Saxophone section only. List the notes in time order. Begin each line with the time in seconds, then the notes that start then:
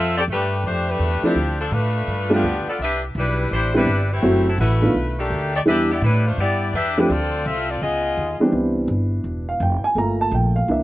Already playing: C4 F4 A4 E5
0.18 C4 G4 A4 D5
0.31 A3 D4 G4 B4
0.66 A3 D4 G4 C5
0.89 A3 D4 G4 B4
1.25 F3 C4 D4 G4
1.61 F3 C4 D4 A4
1.73 A3 D4 F4 B4
2.33 F3 B3 D4 G4
2.69 B3 F4 A4 D5
2.83 D4 G4 B4 E5
3.18 G3 D4 E4 B4
3.53 G3 D4 E4 C5
3.77 G3 D4 E4 B4
4.13 E3 A3 C4 G4
4.48 F#3 C4 E4 A4
4.60 A3 E4 F#4 B4
5.19 D#3 A3 D4 G4
5.56 A3 D#4 G4 D5
5.68 D4 G4 B4 E5
5.92 B3 E4 G4 D5
6.04 G3 D4 E4 B4
6.27 A3 D4 F4 C5
6.41 B3 E4 G4 D5
6.75 D4 G4 B4 E5
6.99 G3 D4 E4 B4
7.10 C4 F4 A4 D5
7.46 C4 F4 A4 E5
7.69 C4 F4 A4 D5
7.82 B3 F4 G#4 D#5